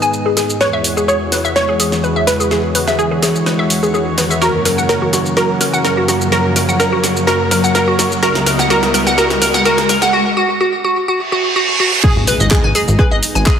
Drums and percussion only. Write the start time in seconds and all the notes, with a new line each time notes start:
0.02 shaker
0.13 shaker
0.37 snare, open hi-hat, shaker
0.50 shaker
0.61 snare, shaker
0.84 open hi-hat, shaker
0.97 shaker
1.09 shaker
1.32 snare, open hi-hat, shaker
1.45 shaker
1.56 snare, shaker
1.80 open hi-hat, shaker
1.92 snare, shaker
2.04 shaker
2.27 snare, open hi-hat, shaker
2.40 shaker
2.51 snare, shaker
2.75 open hi-hat, shaker
2.88 snare, shaker
2.99 shaker
3.23 snare, open hi-hat, shaker
3.35 shaker
3.46 snare, shaker
3.70 open hi-hat, shaker
3.83 shaker
3.94 shaker
4.18 snare, open hi-hat, shaker
4.31 shaker
4.42 snare, shaker
4.65 snare, open hi-hat, shaker
4.78 shaker
4.89 snare, shaker
5.13 snare, open hi-hat, shaker
5.26 shaker
5.37 snare, shaker
5.61 snare, open hi-hat, shaker
5.74 shaker
5.85 snare, shaker
6.08 snare, open hi-hat, shaker
6.21 shaker
6.32 snare, shaker
6.56 snare, open hi-hat, shaker
6.69 shaker
6.80 snare, shaker
7.04 snare, open hi-hat, shaker
7.17 shaker
7.27 snare, shaker
7.51 snare, open hi-hat, shaker
7.64 shaker
7.75 snare, shaker
7.99 snare, open hi-hat, shaker
8.12 shaker
8.23 snare, shaker
8.35 snare
8.46 snare, open hi-hat, shaker
8.59 snare, shaker
8.70 snare, shaker
8.83 snare
8.94 snare, open hi-hat, shaker
9.07 snare, shaker
9.18 snare, shaker
9.30 snare
9.42 snare, open hi-hat, shaker
9.54 snare, shaker
9.65 snare, shaker
9.78 snare
9.89 snare, open hi-hat, shaker
10.02 snare, shaker
12.04 kick, crash, shaker
12.27 open hi-hat, shaker
12.40 shaker
12.51 kick, clap, shaker
12.75 open hi-hat, shaker
12.88 shaker
12.99 kick, shaker
13.23 open hi-hat, shaker
13.36 shaker
13.46 kick, clap, shaker